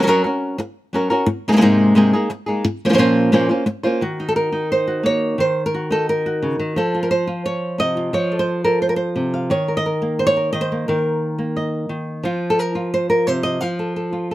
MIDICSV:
0, 0, Header, 1, 3, 480
1, 0, Start_track
1, 0, Tempo, 342661
1, 1783, Time_signature, 4, 2, 24, 8
1, 20093, End_track
2, 0, Start_track
2, 0, Title_t, "Nylon-string guitar"
2, 0, Program_c, 0, 24
2, 35, Note_on_c, 0, 54, 72
2, 43, Note_on_c, 0, 61, 76
2, 46, Note_on_c, 0, 66, 78
2, 53, Note_on_c, 0, 70, 73
2, 83, Note_off_c, 0, 54, 0
2, 91, Note_off_c, 0, 61, 0
2, 94, Note_off_c, 0, 66, 0
2, 99, Note_on_c, 0, 54, 80
2, 104, Note_off_c, 0, 70, 0
2, 108, Note_on_c, 0, 61, 85
2, 111, Note_on_c, 0, 66, 81
2, 121, Note_on_c, 0, 70, 86
2, 321, Note_off_c, 0, 70, 0
2, 331, Note_off_c, 0, 54, 0
2, 335, Note_off_c, 0, 61, 0
2, 337, Note_off_c, 0, 66, 0
2, 338, Note_on_c, 0, 70, 57
2, 353, Note_on_c, 0, 66, 51
2, 372, Note_on_c, 0, 61, 43
2, 803, Note_off_c, 0, 61, 0
2, 811, Note_off_c, 0, 70, 0
2, 818, Note_off_c, 0, 66, 0
2, 1301, Note_on_c, 0, 54, 54
2, 1318, Note_on_c, 0, 61, 55
2, 1322, Note_on_c, 0, 66, 60
2, 1336, Note_on_c, 0, 70, 64
2, 1525, Note_off_c, 0, 70, 0
2, 1532, Note_off_c, 0, 54, 0
2, 1541, Note_off_c, 0, 61, 0
2, 1542, Note_on_c, 0, 70, 60
2, 1543, Note_off_c, 0, 66, 0
2, 1558, Note_on_c, 0, 66, 50
2, 1567, Note_on_c, 0, 61, 48
2, 1773, Note_off_c, 0, 70, 0
2, 1781, Note_off_c, 0, 66, 0
2, 1785, Note_off_c, 0, 61, 0
2, 2071, Note_on_c, 0, 48, 47
2, 2072, Note_on_c, 0, 56, 54
2, 2078, Note_on_c, 0, 63, 56
2, 2081, Note_on_c, 0, 58, 49
2, 2087, Note_on_c, 0, 68, 61
2, 2115, Note_off_c, 0, 48, 0
2, 2121, Note_off_c, 0, 56, 0
2, 2123, Note_off_c, 0, 58, 0
2, 2129, Note_off_c, 0, 63, 0
2, 2132, Note_on_c, 0, 48, 57
2, 2135, Note_off_c, 0, 68, 0
2, 2137, Note_on_c, 0, 56, 61
2, 2140, Note_on_c, 0, 58, 64
2, 2146, Note_on_c, 0, 63, 63
2, 2152, Note_on_c, 0, 68, 71
2, 2176, Note_off_c, 0, 48, 0
2, 2183, Note_off_c, 0, 58, 0
2, 2186, Note_off_c, 0, 56, 0
2, 2193, Note_on_c, 0, 48, 78
2, 2195, Note_off_c, 0, 63, 0
2, 2197, Note_off_c, 0, 68, 0
2, 2200, Note_on_c, 0, 58, 80
2, 2203, Note_on_c, 0, 56, 77
2, 2211, Note_on_c, 0, 63, 77
2, 2214, Note_on_c, 0, 68, 86
2, 2244, Note_off_c, 0, 48, 0
2, 2252, Note_off_c, 0, 56, 0
2, 2252, Note_off_c, 0, 58, 0
2, 2256, Note_off_c, 0, 68, 0
2, 2259, Note_off_c, 0, 63, 0
2, 2260, Note_on_c, 0, 48, 85
2, 2261, Note_on_c, 0, 44, 74
2, 2268, Note_on_c, 0, 56, 80
2, 2269, Note_on_c, 0, 58, 88
2, 2273, Note_on_c, 0, 68, 98
2, 2275, Note_on_c, 0, 63, 87
2, 2715, Note_off_c, 0, 44, 0
2, 2719, Note_off_c, 0, 48, 0
2, 2729, Note_off_c, 0, 56, 0
2, 2732, Note_off_c, 0, 58, 0
2, 2732, Note_on_c, 0, 44, 87
2, 2736, Note_on_c, 0, 48, 82
2, 2738, Note_off_c, 0, 68, 0
2, 2740, Note_off_c, 0, 63, 0
2, 2746, Note_on_c, 0, 56, 87
2, 2749, Note_on_c, 0, 58, 85
2, 2759, Note_on_c, 0, 63, 85
2, 2767, Note_on_c, 0, 68, 88
2, 2968, Note_off_c, 0, 44, 0
2, 2970, Note_off_c, 0, 48, 0
2, 2972, Note_off_c, 0, 68, 0
2, 2975, Note_off_c, 0, 56, 0
2, 2976, Note_off_c, 0, 58, 0
2, 2981, Note_off_c, 0, 63, 0
2, 2989, Note_on_c, 0, 68, 59
2, 2998, Note_on_c, 0, 63, 54
2, 3005, Note_on_c, 0, 58, 51
2, 3013, Note_on_c, 0, 56, 46
2, 3211, Note_off_c, 0, 56, 0
2, 3214, Note_off_c, 0, 63, 0
2, 3216, Note_off_c, 0, 58, 0
2, 3216, Note_off_c, 0, 68, 0
2, 3450, Note_on_c, 0, 68, 52
2, 3471, Note_on_c, 0, 63, 48
2, 3475, Note_on_c, 0, 58, 45
2, 3487, Note_on_c, 0, 56, 39
2, 3687, Note_off_c, 0, 68, 0
2, 3698, Note_off_c, 0, 63, 0
2, 3700, Note_off_c, 0, 58, 0
2, 3706, Note_off_c, 0, 56, 0
2, 3991, Note_on_c, 0, 53, 54
2, 3991, Note_on_c, 0, 58, 52
2, 3997, Note_on_c, 0, 61, 55
2, 4002, Note_on_c, 0, 65, 55
2, 4004, Note_on_c, 0, 72, 62
2, 4033, Note_off_c, 0, 53, 0
2, 4040, Note_off_c, 0, 58, 0
2, 4042, Note_off_c, 0, 61, 0
2, 4048, Note_off_c, 0, 65, 0
2, 4050, Note_off_c, 0, 72, 0
2, 4050, Note_on_c, 0, 53, 59
2, 4057, Note_on_c, 0, 58, 62
2, 4059, Note_on_c, 0, 61, 61
2, 4065, Note_on_c, 0, 65, 60
2, 4067, Note_on_c, 0, 72, 64
2, 4091, Note_off_c, 0, 53, 0
2, 4098, Note_off_c, 0, 58, 0
2, 4108, Note_off_c, 0, 61, 0
2, 4108, Note_off_c, 0, 65, 0
2, 4108, Note_on_c, 0, 53, 78
2, 4109, Note_off_c, 0, 72, 0
2, 4115, Note_on_c, 0, 58, 68
2, 4125, Note_on_c, 0, 61, 73
2, 4125, Note_on_c, 0, 65, 77
2, 4126, Note_on_c, 0, 72, 85
2, 4161, Note_off_c, 0, 53, 0
2, 4165, Note_off_c, 0, 58, 0
2, 4173, Note_off_c, 0, 72, 0
2, 4174, Note_off_c, 0, 61, 0
2, 4175, Note_off_c, 0, 65, 0
2, 4175, Note_on_c, 0, 46, 82
2, 4178, Note_on_c, 0, 53, 72
2, 4182, Note_on_c, 0, 58, 78
2, 4190, Note_on_c, 0, 61, 85
2, 4190, Note_on_c, 0, 72, 90
2, 4191, Note_on_c, 0, 65, 85
2, 4635, Note_off_c, 0, 46, 0
2, 4646, Note_off_c, 0, 53, 0
2, 4648, Note_off_c, 0, 58, 0
2, 4651, Note_on_c, 0, 46, 83
2, 4655, Note_off_c, 0, 61, 0
2, 4658, Note_off_c, 0, 72, 0
2, 4659, Note_off_c, 0, 65, 0
2, 4663, Note_on_c, 0, 53, 75
2, 4665, Note_on_c, 0, 58, 90
2, 4672, Note_on_c, 0, 61, 81
2, 4679, Note_on_c, 0, 72, 84
2, 4681, Note_on_c, 0, 65, 83
2, 4873, Note_off_c, 0, 72, 0
2, 4882, Note_off_c, 0, 65, 0
2, 4889, Note_off_c, 0, 46, 0
2, 4890, Note_on_c, 0, 72, 51
2, 4894, Note_off_c, 0, 53, 0
2, 4894, Note_off_c, 0, 61, 0
2, 4896, Note_off_c, 0, 58, 0
2, 4898, Note_on_c, 0, 65, 47
2, 4911, Note_on_c, 0, 61, 49
2, 4921, Note_on_c, 0, 58, 46
2, 5111, Note_off_c, 0, 58, 0
2, 5120, Note_off_c, 0, 61, 0
2, 5124, Note_off_c, 0, 72, 0
2, 5125, Note_off_c, 0, 65, 0
2, 5371, Note_on_c, 0, 72, 55
2, 5380, Note_on_c, 0, 65, 51
2, 5396, Note_on_c, 0, 61, 47
2, 5404, Note_on_c, 0, 58, 48
2, 5609, Note_off_c, 0, 72, 0
2, 5613, Note_off_c, 0, 65, 0
2, 5621, Note_off_c, 0, 61, 0
2, 5621, Note_on_c, 0, 51, 67
2, 5626, Note_off_c, 0, 58, 0
2, 5634, Note_on_c, 0, 66, 71
2, 5879, Note_on_c, 0, 63, 39
2, 6003, Note_on_c, 0, 69, 80
2, 6101, Note_off_c, 0, 69, 0
2, 6107, Note_on_c, 0, 70, 77
2, 6332, Note_off_c, 0, 63, 0
2, 6337, Note_on_c, 0, 63, 57
2, 6471, Note_off_c, 0, 66, 0
2, 6588, Note_off_c, 0, 70, 0
2, 6608, Note_on_c, 0, 72, 94
2, 6829, Note_on_c, 0, 66, 42
2, 7051, Note_on_c, 0, 58, 59
2, 7079, Note_off_c, 0, 72, 0
2, 7085, Note_on_c, 0, 73, 95
2, 7512, Note_off_c, 0, 58, 0
2, 7516, Note_off_c, 0, 63, 0
2, 7518, Note_off_c, 0, 51, 0
2, 7521, Note_off_c, 0, 66, 0
2, 7538, Note_on_c, 0, 51, 62
2, 7558, Note_off_c, 0, 73, 0
2, 7568, Note_on_c, 0, 72, 82
2, 7920, Note_off_c, 0, 72, 0
2, 7926, Note_on_c, 0, 70, 80
2, 8046, Note_on_c, 0, 66, 44
2, 8273, Note_on_c, 0, 63, 56
2, 8279, Note_off_c, 0, 70, 0
2, 8293, Note_on_c, 0, 69, 78
2, 8522, Note_off_c, 0, 69, 0
2, 8534, Note_on_c, 0, 70, 79
2, 8752, Note_off_c, 0, 66, 0
2, 8769, Note_on_c, 0, 66, 43
2, 8999, Note_on_c, 0, 49, 58
2, 9221, Note_off_c, 0, 51, 0
2, 9233, Note_off_c, 0, 49, 0
2, 9238, Note_on_c, 0, 51, 57
2, 9445, Note_off_c, 0, 63, 0
2, 9453, Note_off_c, 0, 66, 0
2, 9473, Note_on_c, 0, 53, 68
2, 9476, Note_off_c, 0, 51, 0
2, 9484, Note_off_c, 0, 70, 0
2, 9492, Note_on_c, 0, 69, 76
2, 9730, Note_on_c, 0, 65, 39
2, 9839, Note_off_c, 0, 69, 0
2, 9845, Note_on_c, 0, 70, 79
2, 9951, Note_off_c, 0, 70, 0
2, 9957, Note_on_c, 0, 72, 83
2, 10183, Note_off_c, 0, 65, 0
2, 10189, Note_on_c, 0, 65, 58
2, 10436, Note_off_c, 0, 72, 0
2, 10444, Note_on_c, 0, 73, 87
2, 10903, Note_on_c, 0, 48, 53
2, 10920, Note_off_c, 0, 73, 0
2, 10922, Note_on_c, 0, 75, 93
2, 11145, Note_off_c, 0, 65, 0
2, 11162, Note_on_c, 0, 65, 44
2, 11370, Note_off_c, 0, 65, 0
2, 11373, Note_off_c, 0, 53, 0
2, 11389, Note_off_c, 0, 48, 0
2, 11390, Note_on_c, 0, 53, 65
2, 11403, Note_on_c, 0, 73, 88
2, 11649, Note_on_c, 0, 69, 36
2, 11750, Note_off_c, 0, 73, 0
2, 11756, Note_on_c, 0, 72, 83
2, 11879, Note_off_c, 0, 75, 0
2, 12090, Note_off_c, 0, 69, 0
2, 12104, Note_off_c, 0, 72, 0
2, 12107, Note_on_c, 0, 69, 54
2, 12110, Note_on_c, 0, 70, 76
2, 12347, Note_off_c, 0, 70, 0
2, 12353, Note_on_c, 0, 72, 73
2, 12449, Note_off_c, 0, 72, 0
2, 12454, Note_on_c, 0, 70, 65
2, 12550, Note_off_c, 0, 70, 0
2, 12556, Note_on_c, 0, 72, 71
2, 12826, Note_on_c, 0, 48, 57
2, 13079, Note_on_c, 0, 77, 42
2, 13283, Note_off_c, 0, 69, 0
2, 13288, Note_off_c, 0, 77, 0
2, 13308, Note_on_c, 0, 51, 66
2, 13311, Note_off_c, 0, 48, 0
2, 13313, Note_off_c, 0, 53, 0
2, 13318, Note_off_c, 0, 72, 0
2, 13319, Note_on_c, 0, 73, 77
2, 13563, Note_on_c, 0, 70, 39
2, 13676, Note_off_c, 0, 73, 0
2, 13684, Note_on_c, 0, 75, 91
2, 13804, Note_off_c, 0, 70, 0
2, 13810, Note_on_c, 0, 70, 42
2, 14033, Note_on_c, 0, 58, 58
2, 14272, Note_off_c, 0, 70, 0
2, 14277, Note_on_c, 0, 72, 85
2, 14375, Note_off_c, 0, 75, 0
2, 14380, Note_on_c, 0, 73, 90
2, 14515, Note_off_c, 0, 72, 0
2, 14521, Note_on_c, 0, 70, 42
2, 14739, Note_off_c, 0, 73, 0
2, 14745, Note_on_c, 0, 75, 91
2, 14753, Note_off_c, 0, 51, 0
2, 14769, Note_on_c, 0, 51, 56
2, 14857, Note_off_c, 0, 70, 0
2, 14863, Note_on_c, 0, 72, 88
2, 14994, Note_off_c, 0, 58, 0
2, 15015, Note_on_c, 0, 58, 40
2, 15213, Note_off_c, 0, 51, 0
2, 15229, Note_off_c, 0, 72, 0
2, 15240, Note_on_c, 0, 70, 65
2, 15252, Note_on_c, 0, 51, 68
2, 15350, Note_off_c, 0, 75, 0
2, 15931, Note_off_c, 0, 58, 0
2, 15948, Note_on_c, 0, 58, 55
2, 16200, Note_on_c, 0, 75, 46
2, 16436, Note_off_c, 0, 70, 0
2, 16643, Note_off_c, 0, 51, 0
2, 16660, Note_on_c, 0, 51, 58
2, 17118, Note_off_c, 0, 51, 0
2, 17127, Note_off_c, 0, 75, 0
2, 17138, Note_on_c, 0, 53, 66
2, 17150, Note_off_c, 0, 58, 0
2, 17160, Note_on_c, 0, 65, 71
2, 17511, Note_on_c, 0, 69, 80
2, 17637, Note_off_c, 0, 69, 0
2, 17637, Note_on_c, 0, 70, 75
2, 17845, Note_off_c, 0, 65, 0
2, 17861, Note_on_c, 0, 65, 56
2, 18114, Note_off_c, 0, 70, 0
2, 18122, Note_on_c, 0, 72, 83
2, 18340, Note_off_c, 0, 72, 0
2, 18345, Note_on_c, 0, 70, 88
2, 18586, Note_off_c, 0, 70, 0
2, 18586, Note_on_c, 0, 72, 96
2, 18594, Note_on_c, 0, 48, 57
2, 18817, Note_on_c, 0, 75, 86
2, 19060, Note_off_c, 0, 75, 0
2, 19060, Note_on_c, 0, 77, 79
2, 19071, Note_off_c, 0, 48, 0
2, 19071, Note_off_c, 0, 53, 0
2, 19077, Note_on_c, 0, 53, 70
2, 19307, Note_off_c, 0, 72, 0
2, 19319, Note_on_c, 0, 69, 40
2, 19543, Note_off_c, 0, 69, 0
2, 19560, Note_on_c, 0, 69, 44
2, 19782, Note_off_c, 0, 65, 0
2, 19787, Note_on_c, 0, 65, 52
2, 20033, Note_off_c, 0, 69, 0
2, 20048, Note_on_c, 0, 69, 48
2, 20093, Note_off_c, 0, 53, 0
2, 20093, Note_off_c, 0, 65, 0
2, 20093, Note_off_c, 0, 69, 0
2, 20093, Note_off_c, 0, 77, 0
2, 20093, End_track
3, 0, Start_track
3, 0, Title_t, "Muted nylon-string guitar strokes"
3, 817, Note_on_c, 9, 29, 65
3, 957, Note_off_c, 9, 29, 0
3, 1772, Note_on_c, 9, 29, 70
3, 1912, Note_off_c, 9, 29, 0
3, 3219, Note_on_c, 9, 29, 75
3, 3359, Note_off_c, 9, 29, 0
3, 3707, Note_on_c, 9, 29, 76
3, 3847, Note_off_c, 9, 29, 0
3, 5128, Note_on_c, 9, 29, 64
3, 5268, Note_off_c, 9, 29, 0
3, 20093, End_track
0, 0, End_of_file